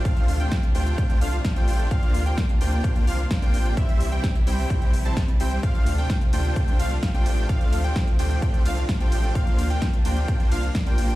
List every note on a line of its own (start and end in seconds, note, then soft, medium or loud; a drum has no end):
0.00 1.87 C3 medium
0.00 1.87 A3 medium
0.00 3.73 D4 medium
0.00 3.73 F4 medium
0.05 0.37 A3 medium
0.05 0.37 D4 medium
0.05 0.37 F4 medium
0.05 0.37 C5 medium
0.05 0.37 F5 loud
0.05 kick loud
0.05 closed hi-hat loud
0.17 closed hi-hat soft
0.28 0.47 D2 loud
0.28 open hi-hat loud
0.40 0.55 A3 medium
0.40 0.55 D4 medium
0.40 0.55 F4 medium
0.40 0.55 C5 medium
0.40 0.55 G5 loud
0.40 closed hi-hat soft
0.52 kick loud
0.52 snare loud
0.52 closed hi-hat loud
0.63 closed hi-hat soft
0.75 0.93 D2 medium
0.75 1.19 A3 medium
0.75 1.19 D4 medium
0.75 1.19 F4 medium
0.75 1.19 C5 medium
0.75 1.19 G5 medium
0.75 open hi-hat loud
0.86 closed hi-hat soft
0.98 kick loud
0.98 closed hi-hat medium
1.10 closed hi-hat soft
1.21 1.40 C2 medium
1.21 1.37 A3 medium
1.21 1.37 D4 medium
1.21 1.37 F4 medium
1.21 1.37 C5 medium
1.21 1.37 F5 loud
1.21 open hi-hat loud
1.33 closed hi-hat soft
1.45 kick loud
1.45 snare loud
1.45 closed hi-hat medium
1.56 1.88 A3 medium
1.56 1.88 D4 medium
1.56 1.88 F4 medium
1.56 1.88 C5 medium
1.56 1.88 G5 medium
1.56 closed hi-hat soft
1.68 1.86 A1 loud
1.68 open hi-hat loud
1.79 closed hi-hat soft
1.91 11.15 C3 medium
1.91 2.23 A#3 medium
1.91 3.75 A#3 medium
1.91 2.23 D4 medium
1.91 2.23 F4 medium
1.91 2.23 C5 medium
1.91 2.23 F5 loud
1.91 kick loud
1.91 closed hi-hat medium
2.03 closed hi-hat soft
2.14 2.33 D2 loud
2.14 open hi-hat loud
2.26 2.41 A#3 medium
2.26 2.41 D4 medium
2.26 2.41 F4 medium
2.26 2.41 C5 medium
2.26 2.41 G5 loud
2.26 closed hi-hat soft
2.38 kick loud
2.38 snare loud
2.38 closed hi-hat medium
2.49 closed hi-hat soft
2.61 2.79 D2 medium
2.61 3.05 A#3 medium
2.61 3.05 D4 medium
2.61 3.05 F4 medium
2.61 3.05 C5 medium
2.61 3.05 G5 medium
2.61 open hi-hat loud
2.73 closed hi-hat soft
2.84 kick loud
2.84 closed hi-hat medium
2.96 closed hi-hat soft
3.07 3.26 C2 medium
3.07 3.23 A#3 medium
3.07 3.23 D4 medium
3.07 3.23 F4 medium
3.07 3.23 C5 medium
3.07 3.23 F5 loud
3.07 open hi-hat loud
3.19 closed hi-hat soft
3.31 kick loud
3.31 snare loud
3.31 closed hi-hat medium
3.42 3.74 A#3 medium
3.42 3.74 D4 medium
3.42 3.74 F4 medium
3.42 3.74 C5 medium
3.42 3.74 G5 medium
3.42 closed hi-hat soft
3.54 3.72 A1 loud
3.54 open hi-hat loud
3.66 closed hi-hat soft
3.77 5.61 E3 medium
3.77 4.09 G3 medium
3.77 5.61 G3 medium
3.77 4.09 C4 medium
3.77 4.09 E4 medium
3.77 5.61 E4 medium
3.77 4.09 C5 medium
3.77 4.09 E5 loud
3.77 kick loud
3.77 closed hi-hat medium
3.89 closed hi-hat soft
4.00 4.19 C2 loud
4.00 open hi-hat loud
4.12 4.27 G3 medium
4.12 4.27 C4 medium
4.12 4.27 E4 medium
4.12 4.27 C5 medium
4.12 4.27 G5 loud
4.12 closed hi-hat soft
4.24 kick loud
4.24 snare loud
4.24 closed hi-hat medium
4.35 closed hi-hat soft
4.47 4.65 C2 medium
4.47 4.91 G3 medium
4.47 4.91 C4 medium
4.47 4.91 E4 medium
4.47 4.91 C5 medium
4.47 4.91 G5 medium
4.47 open hi-hat loud
4.59 open hi-hat medium
4.70 kick loud
4.70 closed hi-hat medium
4.82 closed hi-hat soft
4.93 5.12 A#1 medium
4.93 open hi-hat loud
5.05 5.20 G3 medium
5.05 5.20 C4 medium
5.05 5.20 E4 medium
5.05 5.20 C5 medium
5.05 5.20 A5 medium
5.05 5.20 A5 loud
5.05 closed hi-hat soft
5.17 kick loud
5.17 snare loud
5.17 closed hi-hat medium
5.28 closed hi-hat soft
5.40 5.58 C2 medium
5.40 5.60 G3 medium
5.40 5.60 C4 medium
5.40 5.60 E4 medium
5.40 5.60 C5 medium
5.40 5.60 G5 medium
5.40 open hi-hat loud
5.52 closed hi-hat soft
5.63 11.15 F3 medium
5.63 5.95 A3 medium
5.63 9.32 A3 medium
5.63 5.95 D4 medium
5.63 7.47 D4 medium
5.63 5.95 F4 medium
5.63 5.95 C5 medium
5.63 5.95 F5 loud
5.63 kick loud
5.63 closed hi-hat medium
5.75 closed hi-hat soft
5.86 6.05 D2 loud
5.86 open hi-hat loud
5.86 ride medium
5.98 6.13 A3 medium
5.98 6.13 D4 medium
5.98 6.13 F4 medium
5.98 6.13 C5 medium
5.98 6.13 G5 loud
5.98 closed hi-hat soft
6.10 kick loud
6.10 snare loud
6.10 closed hi-hat medium
6.21 closed hi-hat soft
6.33 6.51 D2 medium
6.33 6.77 A3 medium
6.33 6.77 D4 medium
6.33 6.77 F4 medium
6.33 6.77 C5 medium
6.33 6.77 G5 medium
6.33 open hi-hat loud
6.33 ride medium
6.45 closed hi-hat soft
6.56 kick loud
6.56 closed hi-hat medium
6.68 closed hi-hat soft
6.79 6.98 C2 medium
6.79 6.95 A3 medium
6.79 6.95 D4 medium
6.79 6.95 F4 medium
6.79 6.95 C5 medium
6.79 6.95 F5 loud
6.79 open hi-hat loud
6.79 ride medium
6.91 closed hi-hat soft
7.03 kick loud
7.03 snare loud
7.03 closed hi-hat medium
7.14 7.46 A3 medium
7.14 7.46 D4 medium
7.14 7.46 F4 medium
7.14 7.46 C5 medium
7.14 7.46 G5 medium
7.14 closed hi-hat soft
7.26 7.44 A1 loud
7.26 open hi-hat loud
7.26 ride medium
7.38 closed hi-hat soft
7.49 7.81 A3 medium
7.49 9.33 C4 medium
7.49 7.81 D4 medium
7.49 7.81 F4 medium
7.49 7.81 C5 medium
7.49 7.81 F5 loud
7.49 kick loud
7.49 closed hi-hat medium
7.61 closed hi-hat soft
7.72 7.91 D2 loud
7.72 open hi-hat loud
7.72 ride medium
7.84 7.99 A3 medium
7.84 7.99 D4 medium
7.84 7.99 F4 medium
7.84 7.99 C5 medium
7.84 7.99 G5 loud
7.84 closed hi-hat soft
7.96 kick loud
7.96 snare loud
7.96 closed hi-hat medium
8.07 closed hi-hat soft
8.19 8.37 D2 medium
8.19 8.63 A3 medium
8.19 8.63 D4 medium
8.19 8.63 F4 medium
8.19 8.63 C5 medium
8.19 8.63 G5 medium
8.19 open hi-hat loud
8.19 ride medium
8.31 closed hi-hat soft
8.42 kick loud
8.42 closed hi-hat medium
8.54 closed hi-hat soft
8.66 8.84 C2 medium
8.66 8.81 A3 loud
8.66 8.81 D4 medium
8.66 8.81 F4 medium
8.66 8.81 C5 medium
8.66 8.81 F5 loud
8.66 open hi-hat loud
8.66 ride medium
8.77 closed hi-hat soft
8.89 kick loud
8.89 snare loud
8.89 closed hi-hat medium
9.00 9.33 A3 medium
9.00 9.33 D4 medium
9.00 9.33 F4 medium
9.00 9.32 C5 medium
9.00 9.33 G5 loud
9.00 9.33 G5 medium
9.00 closed hi-hat soft
9.12 9.30 A1 loud
9.12 open hi-hat loud
9.12 ride medium
9.24 closed hi-hat soft
9.35 9.67 A#3 medium
9.35 11.15 A#3 medium
9.35 9.67 D4 medium
9.35 11.15 D4 medium
9.35 9.67 F4 medium
9.35 9.67 C5 medium
9.35 9.67 F5 loud
9.35 kick loud
9.35 closed hi-hat loud
9.47 closed hi-hat soft
9.59 9.77 D2 loud
9.59 open hi-hat loud
9.59 ride medium
9.70 9.85 A#3 medium
9.70 9.85 D4 medium
9.70 9.85 F4 medium
9.70 9.85 C5 medium
9.70 9.85 G5 loud
9.70 closed hi-hat soft
9.82 kick loud
9.82 snare loud
9.82 closed hi-hat medium
9.93 closed hi-hat soft
10.05 10.23 D2 medium
10.05 10.49 A#3 medium
10.05 10.49 D4 medium
10.05 10.49 F4 medium
10.05 10.49 C5 medium
10.05 10.49 G5 medium
10.05 open hi-hat loud
10.05 ride medium
10.17 closed hi-hat soft
10.28 kick loud
10.28 closed hi-hat medium
10.40 closed hi-hat soft
10.52 10.70 C2 medium
10.52 10.67 A#3 medium
10.52 10.67 D4 medium
10.52 10.67 F4 medium
10.52 10.67 C5 medium
10.52 10.67 F5 loud
10.52 open hi-hat loud
10.52 ride medium
10.63 closed hi-hat soft
10.75 kick loud
10.75 snare loud
10.75 closed hi-hat loud
10.86 11.15 A#3 medium
10.86 11.15 D4 medium
10.86 11.15 F4 medium
10.86 11.15 C5 medium
10.86 11.15 G5 medium
10.86 closed hi-hat soft
10.98 11.15 A1 loud
10.98 open hi-hat loud
10.98 ride medium
11.10 closed hi-hat soft